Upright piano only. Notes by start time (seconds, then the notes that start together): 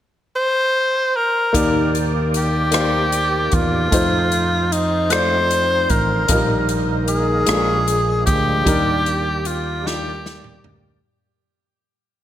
1.53 D#3 A#3 D#4 G4 D5
2.71 A#3 D#4 G4 C5
2.81 D5
3.91 A3 D#4 F4 C5
5.10 A3 D#4 F4 D5
6.29 A#2 F3 A#3 D#4 A#4
6.34 G3
7.46 A#2 G#3 D4 F4
7.50 A4
7.57 A#4
8.64 D#3 G3 D4 D#4 A#4
9.82 G3 D4 D#4 F4
9.92 G4